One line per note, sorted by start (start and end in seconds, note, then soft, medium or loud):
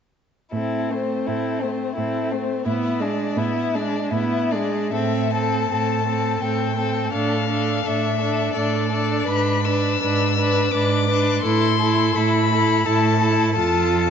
0.52 1.16 A2 soft
0.52 0.92 C4 soft
0.52 0.92 E4 soft
0.52 0.92 A4 soft
0.91 1.30 A3 soft
0.91 1.28 C4 soft
0.91 1.28 C5 soft
1.27 1.87 A2 soft
1.27 1.65 C4 soft
1.27 1.63 E4 soft
1.27 1.64 A4 soft
1.62 1.97 A3 soft
1.62 1.95 C4 soft
1.62 1.97 C5 soft
1.96 2.56 A2 soft
1.96 2.34 C4 soft
1.96 2.33 E4 soft
1.96 2.35 A4 soft
2.32 2.66 A3 soft
2.32 2.67 C4 soft
2.32 2.66 C5 soft
2.66 3.26 A2 soft
2.66 3.01 B3 soft
2.66 3.04 E4 soft
2.66 3.02 E5 soft
3.00 3.38 G#3 soft
3.00 3.39 D4 soft
3.00 3.39 D5 soft
3.37 4.01 A2 soft
3.37 3.77 B3 soft
3.37 3.76 E4 soft
3.37 3.77 E5 soft
3.75 4.13 G#3 soft
3.75 4.13 D4 soft
3.75 4.11 D5 soft
4.11 4.80 A2 medium
4.11 4.56 B3 soft
4.11 4.53 E4 soft
4.11 4.53 E5 soft
4.51 4.93 G#3 soft
4.51 4.92 D4 soft
4.51 4.92 D5 soft
4.92 5.61 A2 soft
4.92 5.32 C4 soft
4.92 5.32 A4 soft
4.92 5.33 E5 soft
5.31 5.69 C4 soft
5.31 5.70 A4 soft
5.31 6.43 A5 soft
5.69 6.33 A2 soft
5.69 6.04 C4 soft
5.69 6.06 A4 soft
6.05 6.40 C4 soft
6.05 6.42 A4 soft
6.41 7.05 A2 soft
6.41 6.75 C4 soft
6.41 6.77 A4 soft
6.41 7.13 G5 soft
6.76 7.12 C4 soft
6.76 7.13 A4 soft
7.12 7.76 A2 soft
7.12 7.48 D4 soft
7.12 7.49 A4 soft
7.12 7.88 F5 soft
7.49 7.84 D4 soft
7.49 7.83 A4 soft
7.83 8.47 A2 soft
7.83 8.20 D4 soft
7.83 8.19 A4 soft
7.83 8.54 E5 medium
8.19 8.55 D4 soft
8.19 8.54 A4 soft
8.53 9.18 A2 soft
8.53 8.90 D4 soft
8.53 8.89 A4 soft
8.53 9.28 D5 soft
8.90 9.28 D4 soft
8.90 9.26 A4 soft
9.26 9.92 G#2 soft
9.26 9.64 B4 soft
9.26 9.66 B5 medium
9.30 9.66 D4 soft
9.65 10.02 D4 soft
9.65 10.01 B4 soft
9.65 10.73 E6 medium
10.00 10.64 G#2 soft
10.00 10.37 D4 soft
10.00 10.37 B4 soft
10.37 10.73 D4 soft
10.37 10.72 B4 soft
10.71 11.35 G#2 medium
10.71 11.08 D4 soft
10.71 11.08 B4 soft
10.71 11.42 D6 medium
11.09 11.45 D4 soft
11.09 11.43 B4 soft
11.42 12.07 A2 medium
11.42 11.80 E4 soft
11.42 11.79 A4 soft
11.42 12.17 C6 medium
11.79 12.16 E4 soft
11.79 12.14 A4 soft
12.14 12.79 A2 medium
12.14 12.51 E4 soft
12.14 12.50 A4 soft
12.14 12.87 B5 medium
12.51 12.87 E4 soft
12.51 12.85 A4 soft
12.86 13.49 A2 medium
12.86 13.22 E4 soft
12.86 13.20 A4 soft
12.86 13.55 A5 medium
13.20 13.57 E4 soft
13.20 13.54 A4 soft
13.54 14.10 F2 medium
13.54 14.10 F4 soft
13.54 14.10 A4 medium
13.54 14.10 A5 medium